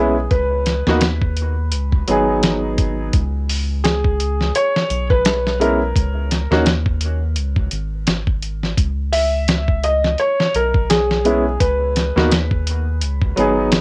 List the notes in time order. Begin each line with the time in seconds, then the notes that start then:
Already playing: B1 G#3 B3 C#4 E4 G#4
0.31 C#2 B4, kick, closed hi-hat
0.66 snare, closed hi-hat
0.87 D#2 A#3 B3 D#4 F#4, snare
1.01 snare, closed hi-hat
1.22 kick
1.37 closed hi-hat
1.72 C#2, closed hi-hat
1.92 kick
2.08 G#1 F#3 B3 D#4 G#4, closed hi-hat
2.43 snare, closed hi-hat
2.78 kick, closed hi-hat
3.13 C#2, kick, closed hi-hat
3.49 open hi-hat
3.84 G#4, snare, closed hi-hat
4.04 kick
4.20 closed hi-hat
4.41 snare
4.55 C#5, closed hi-hat
4.76 snare
4.90 B1, closed hi-hat
5.10 B4, kick
5.25 snare, closed hi-hat
5.47 snare
5.60 G#3 B3 C#4 E4 A#4, closed hi-hat
5.96 C#2, kick, closed hi-hat
6.31 snare, closed hi-hat
6.51 D#2 A#3 C#4 D#4 F#4, snare
6.66 snare, closed hi-hat
6.86 kick
7.01 closed hi-hat
7.36 C#2, closed hi-hat
7.56 kick
7.71 G#1, closed hi-hat
8.07 G#1, snare, closed hi-hat
8.27 kick
8.43 closed hi-hat
8.63 snare
8.78 C#2, kick, closed hi-hat
9.13 E5, open hi-hat
9.48 snare, closed hi-hat
9.68 kick
9.84 D#5, closed hi-hat
10.04 snare
10.18 C#5, closed hi-hat
10.40 snare
10.54 B1 A#4, closed hi-hat
10.74 kick
10.90 G#4, snare, closed hi-hat
11.11 snare
11.25 G#3 B3 C#4 E4, closed hi-hat
11.60 C#2 B4, kick, closed hi-hat
11.96 snare, closed hi-hat
12.16 D#2 A#3 B3 D#4 F#4, snare
12.31 snare, closed hi-hat
12.51 kick
12.67 closed hi-hat
13.01 C#2, closed hi-hat
13.22 kick
13.36 G#1 F#3 B3 D#4 G#4, closed hi-hat
13.72 snare, closed hi-hat